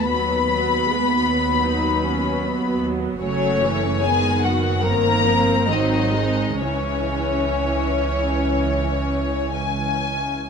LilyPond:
<<
  \new Staff \with { instrumentName = "Violin section" } { \time 4/4 \key b \mixolydian \tempo 4 = 72 b''2.~ b''8 r8 | \key cis \minor cis''4 gis''8 fis''8 ais''4 dis''4 | cis''2. gis''4 | }
  \new Staff \with { instrumentName = "Violin section" } { \time 4/4 \key b \mixolydian b'2.~ b'8 r8 | \key cis \minor cis'4 gis'8 fis'8 ais'4 dis'4 | cis'2. r4 | }
  \new Staff \with { instrumentName = "Viola section" } { \clef bass \time 4/4 \key b \mixolydian << { b4 b4 dis'8 cis'8 b4 | \key cis \minor a4 b4 bis2 | cis'2.~ cis'8. r16 | } \\ { fis8 fis8 gis8 fis2~ fis8 | fis8 e8 dis4 dis8 eis8 fis8 gis8 | e2.~ e8. r16 | } >> }
  \new Staff \with { instrumentName = "Cello section" } { \clef bass \time 4/4 \key b \mixolydian b2.~ b8 r8 | \key cis \minor cis4 gis8 fis8 ais4 dis4 | cis2. r4 | }
  \new Staff \with { instrumentName = "Double bass section" } { \clef bass \time 4/4 \key b \mixolydian dis,1 | \key cis \minor fis,,2 g,,4 gis,,4 | cis,2.~ cis,8. r16 | }
>>